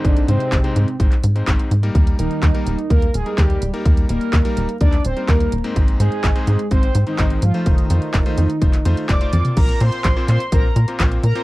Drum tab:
CC |----------------|----------------|----------------|----------------|
HH |xxxxxxxxxxxxxxxx|xxxxxxxxxxxxxxxx|xxxxxxxxxxxxxxxx|xxxxxxxxxxxxxxxx|
CP |----x----x--x---|----x-------x---|----x----x--x---|----x-------x---|
T1 |----------------|----------------|----------------|----------------|
T2 |----------------|----------------|----------------|----------------|
BD |o---o---o---o---|o---o---o---o---|o---o---o---o---|o---o---o---o---|

CC |----------------|x---------------|
HH |xxxxxxxxxxxxxxxx|xxxxx-xxx-xxxxxx|
CP |----x----x--x---|----x-x-----x---|
T1 |--------------o-|----------------|
T2 |---------------o|----------------|
BD |o---o---o---o---|o---o---o---o---|